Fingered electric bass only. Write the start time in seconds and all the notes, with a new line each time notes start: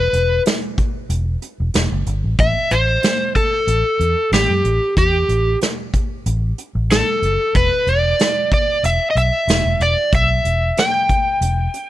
0.13 E1
1.09 E1
1.60 E1
1.75 E1
1.92 F#1
2.06 G1
2.24 A1
2.39 A1
2.71 A1
3.67 A1
4.00 E2
4.32 A1
4.49 F#2
4.64 A1
4.97 E2
5.29 A1
6.26 A1
6.75 A1
7.22 F#1
7.55 E1
7.87 E1
8.83 E1
9.15 B1
9.47 E1
9.65 E1
9.80 E1
10.13 B1
10.45 E1
11.41 E1